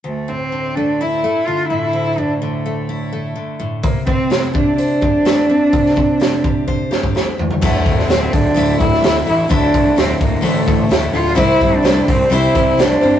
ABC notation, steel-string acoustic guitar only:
X:1
M:4/4
L:1/8
Q:1/4=127
K:Cmix
V:1 name="Steel-string acoustic guitar"
D,, A,, D, A, E A, D, A,, | D,, A,, D, A, E A, D, A,, | C, C E G c G E C | C, C E G c G E D,, |
[D,,A,,D,A,E]2 [A,,D,A,E]2 [D,,A,,D,A,E] [D,A,E] [A,,D,A,E] [D,A,E] | [D,,A,,D,A,E]2 [A,,D,A,E]2 [D,,A,,D,A,E] [D,A,E] [A,,D,A,E] [D,A,E] | [C,G,CEGc]2 [CEGc]2 [C,G,CEGc] [CEGc] [CEGc] [CEGc] |]